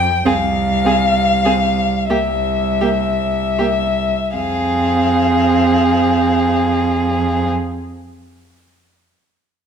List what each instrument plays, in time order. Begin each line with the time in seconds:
Already playing: violin G5
0.24 cello C2, viola C4, violin G#4 F5
0.85 viola C4, violin G#4
1.45 viola C4, violin G#4
2.10 cello C2, viola A#3, violin G4 E5
2.81 viola A#3, violin G4
3.58 viola A#3, violin G4
4.36 cello F2, viola C4, violin G#4 F5